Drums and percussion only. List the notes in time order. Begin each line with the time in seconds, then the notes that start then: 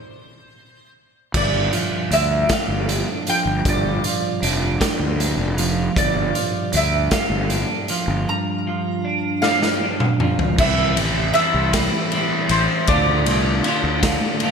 1.34 kick, crash
1.73 closed hi-hat
2.12 closed hi-hat
2.49 kick, snare, closed hi-hat
2.89 closed hi-hat
3.27 closed hi-hat
3.65 kick, closed hi-hat
4.04 closed hi-hat
4.43 closed hi-hat
4.81 kick, snare, closed hi-hat
5.20 closed hi-hat
5.58 closed hi-hat
5.96 kick, closed hi-hat
6.35 closed hi-hat
6.73 closed hi-hat
7.11 kick, snare, closed hi-hat
7.50 closed hi-hat
7.88 closed hi-hat
9.43 snare
9.62 snare
10.00 mid tom
10.20 mid tom
10.39 floor tom
10.58 kick, crash
10.97 ride
11.35 ride
11.73 kick, snare, ride
12.12 ride
12.49 ride
12.87 kick, ride
13.26 ride
13.64 ride
14.03 kick, snare, ride
14.40 ride